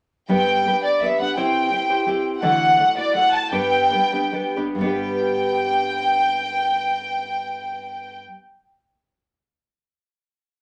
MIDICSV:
0, 0, Header, 1, 3, 480
1, 0, Start_track
1, 0, Key_signature, 1, "major"
1, 0, Tempo, 355240
1, 404, Time_signature, 3, 2, 24, 8
1, 3758, Tempo, 379027
1, 5198, Tempo, 443131
1, 6158, Tempo, 478088
1, 11991, End_track
2, 0, Start_track
2, 0, Title_t, "Violin section"
2, 0, Program_c, 0, 48
2, 407, Note_on_c, 0, 79, 76
2, 1089, Note_off_c, 0, 79, 0
2, 1144, Note_on_c, 0, 74, 65
2, 1360, Note_off_c, 0, 74, 0
2, 1405, Note_on_c, 0, 76, 64
2, 1636, Note_off_c, 0, 76, 0
2, 1637, Note_on_c, 0, 78, 68
2, 1846, Note_off_c, 0, 78, 0
2, 1864, Note_on_c, 0, 79, 69
2, 3000, Note_off_c, 0, 79, 0
2, 3268, Note_on_c, 0, 78, 79
2, 3938, Note_off_c, 0, 78, 0
2, 4011, Note_on_c, 0, 74, 83
2, 4226, Note_off_c, 0, 74, 0
2, 4228, Note_on_c, 0, 78, 76
2, 4448, Note_off_c, 0, 78, 0
2, 4461, Note_on_c, 0, 81, 74
2, 4689, Note_on_c, 0, 79, 74
2, 4695, Note_off_c, 0, 81, 0
2, 5864, Note_off_c, 0, 79, 0
2, 6159, Note_on_c, 0, 79, 69
2, 9530, Note_off_c, 0, 79, 0
2, 11991, End_track
3, 0, Start_track
3, 0, Title_t, "Nylon-string guitar"
3, 0, Program_c, 1, 24
3, 386, Note_on_c, 1, 43, 63
3, 393, Note_on_c, 1, 55, 64
3, 393, Note_on_c, 1, 62, 59
3, 398, Note_on_c, 1, 67, 62
3, 400, Note_on_c, 1, 59, 61
3, 402, Note_on_c, 1, 71, 59
3, 873, Note_off_c, 1, 59, 0
3, 881, Note_off_c, 1, 43, 0
3, 884, Note_off_c, 1, 67, 0
3, 885, Note_off_c, 1, 55, 0
3, 885, Note_off_c, 1, 62, 0
3, 889, Note_off_c, 1, 71, 0
3, 890, Note_on_c, 1, 59, 41
3, 900, Note_on_c, 1, 67, 44
3, 901, Note_on_c, 1, 62, 47
3, 912, Note_on_c, 1, 71, 52
3, 1363, Note_off_c, 1, 59, 0
3, 1373, Note_off_c, 1, 62, 0
3, 1379, Note_off_c, 1, 67, 0
3, 1380, Note_on_c, 1, 59, 49
3, 1385, Note_off_c, 1, 71, 0
3, 1389, Note_on_c, 1, 62, 44
3, 1395, Note_on_c, 1, 67, 49
3, 1402, Note_on_c, 1, 71, 49
3, 1595, Note_off_c, 1, 71, 0
3, 1608, Note_off_c, 1, 67, 0
3, 1612, Note_on_c, 1, 71, 38
3, 1621, Note_off_c, 1, 62, 0
3, 1623, Note_off_c, 1, 59, 0
3, 1625, Note_on_c, 1, 67, 33
3, 1637, Note_on_c, 1, 62, 29
3, 1639, Note_on_c, 1, 59, 33
3, 1847, Note_off_c, 1, 67, 0
3, 1848, Note_off_c, 1, 59, 0
3, 1848, Note_on_c, 1, 48, 63
3, 1849, Note_off_c, 1, 71, 0
3, 1851, Note_off_c, 1, 62, 0
3, 1853, Note_on_c, 1, 60, 59
3, 1856, Note_on_c, 1, 64, 76
3, 1861, Note_on_c, 1, 72, 67
3, 1863, Note_on_c, 1, 67, 65
3, 2300, Note_off_c, 1, 60, 0
3, 2313, Note_off_c, 1, 64, 0
3, 2317, Note_on_c, 1, 60, 46
3, 2320, Note_off_c, 1, 67, 0
3, 2322, Note_off_c, 1, 72, 0
3, 2327, Note_off_c, 1, 48, 0
3, 2329, Note_on_c, 1, 64, 43
3, 2336, Note_on_c, 1, 67, 46
3, 2338, Note_on_c, 1, 72, 39
3, 2549, Note_off_c, 1, 72, 0
3, 2552, Note_off_c, 1, 67, 0
3, 2560, Note_off_c, 1, 64, 0
3, 2565, Note_on_c, 1, 72, 43
3, 2568, Note_off_c, 1, 60, 0
3, 2568, Note_on_c, 1, 67, 41
3, 2576, Note_on_c, 1, 64, 35
3, 2780, Note_off_c, 1, 64, 0
3, 2787, Note_off_c, 1, 67, 0
3, 2789, Note_on_c, 1, 60, 52
3, 2797, Note_on_c, 1, 64, 65
3, 2801, Note_off_c, 1, 72, 0
3, 2803, Note_on_c, 1, 67, 68
3, 2815, Note_on_c, 1, 72, 58
3, 3266, Note_off_c, 1, 60, 0
3, 3266, Note_off_c, 1, 64, 0
3, 3267, Note_on_c, 1, 50, 73
3, 3271, Note_on_c, 1, 57, 56
3, 3274, Note_off_c, 1, 67, 0
3, 3274, Note_on_c, 1, 52, 73
3, 3275, Note_off_c, 1, 72, 0
3, 3279, Note_on_c, 1, 66, 72
3, 3280, Note_on_c, 1, 74, 73
3, 3282, Note_on_c, 1, 64, 57
3, 3740, Note_off_c, 1, 57, 0
3, 3749, Note_off_c, 1, 64, 0
3, 3755, Note_off_c, 1, 52, 0
3, 3757, Note_on_c, 1, 57, 49
3, 3758, Note_off_c, 1, 66, 0
3, 3765, Note_on_c, 1, 64, 44
3, 3776, Note_off_c, 1, 74, 0
3, 3776, Note_on_c, 1, 66, 45
3, 3781, Note_on_c, 1, 74, 43
3, 3803, Note_off_c, 1, 50, 0
3, 3980, Note_off_c, 1, 74, 0
3, 3983, Note_off_c, 1, 66, 0
3, 3991, Note_off_c, 1, 57, 0
3, 3995, Note_off_c, 1, 64, 0
3, 3995, Note_on_c, 1, 74, 41
3, 3998, Note_on_c, 1, 66, 33
3, 4010, Note_on_c, 1, 64, 40
3, 4019, Note_on_c, 1, 57, 30
3, 4204, Note_off_c, 1, 57, 0
3, 4219, Note_off_c, 1, 74, 0
3, 4219, Note_on_c, 1, 57, 48
3, 4220, Note_off_c, 1, 64, 0
3, 4220, Note_off_c, 1, 66, 0
3, 4234, Note_on_c, 1, 66, 54
3, 4236, Note_on_c, 1, 64, 52
3, 4249, Note_on_c, 1, 74, 58
3, 4688, Note_on_c, 1, 43, 57
3, 4692, Note_off_c, 1, 66, 0
3, 4692, Note_on_c, 1, 55, 70
3, 4695, Note_off_c, 1, 57, 0
3, 4695, Note_off_c, 1, 64, 0
3, 4697, Note_off_c, 1, 74, 0
3, 4697, Note_on_c, 1, 67, 72
3, 4700, Note_on_c, 1, 62, 63
3, 4702, Note_on_c, 1, 71, 76
3, 4704, Note_on_c, 1, 59, 71
3, 5179, Note_off_c, 1, 59, 0
3, 5185, Note_on_c, 1, 59, 41
3, 5188, Note_off_c, 1, 62, 0
3, 5194, Note_off_c, 1, 43, 0
3, 5194, Note_on_c, 1, 62, 42
3, 5196, Note_off_c, 1, 71, 0
3, 5200, Note_off_c, 1, 67, 0
3, 5201, Note_on_c, 1, 71, 46
3, 5204, Note_on_c, 1, 67, 47
3, 5407, Note_off_c, 1, 71, 0
3, 5412, Note_off_c, 1, 67, 0
3, 5417, Note_off_c, 1, 59, 0
3, 5419, Note_off_c, 1, 62, 0
3, 5420, Note_on_c, 1, 71, 38
3, 5425, Note_on_c, 1, 67, 42
3, 5430, Note_on_c, 1, 59, 36
3, 5432, Note_on_c, 1, 62, 44
3, 5624, Note_off_c, 1, 59, 0
3, 5630, Note_off_c, 1, 62, 0
3, 5636, Note_off_c, 1, 67, 0
3, 5637, Note_off_c, 1, 71, 0
3, 5637, Note_on_c, 1, 59, 55
3, 5643, Note_on_c, 1, 62, 58
3, 5649, Note_on_c, 1, 67, 55
3, 5650, Note_on_c, 1, 71, 52
3, 5884, Note_off_c, 1, 71, 0
3, 5885, Note_off_c, 1, 67, 0
3, 5892, Note_off_c, 1, 62, 0
3, 5894, Note_off_c, 1, 59, 0
3, 5897, Note_on_c, 1, 71, 44
3, 5898, Note_on_c, 1, 67, 45
3, 5905, Note_on_c, 1, 62, 45
3, 5907, Note_on_c, 1, 59, 39
3, 6097, Note_on_c, 1, 43, 59
3, 6131, Note_off_c, 1, 55, 0
3, 6135, Note_on_c, 1, 55, 62
3, 6150, Note_off_c, 1, 59, 0
3, 6151, Note_off_c, 1, 71, 0
3, 6152, Note_off_c, 1, 67, 0
3, 6155, Note_off_c, 1, 62, 0
3, 6163, Note_on_c, 1, 59, 75
3, 6188, Note_on_c, 1, 62, 73
3, 6213, Note_on_c, 1, 67, 61
3, 6241, Note_on_c, 1, 71, 62
3, 9615, Note_off_c, 1, 43, 0
3, 9651, Note_off_c, 1, 55, 0
3, 9677, Note_off_c, 1, 59, 0
3, 9702, Note_off_c, 1, 62, 0
3, 9727, Note_off_c, 1, 67, 0
3, 9755, Note_off_c, 1, 71, 0
3, 11991, End_track
0, 0, End_of_file